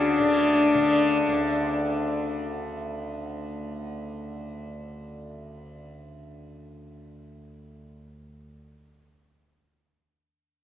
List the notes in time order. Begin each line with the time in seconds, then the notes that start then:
Already playing: D2 C#3 D3 D4
0.20 D3
0.75 D3
1.28 D2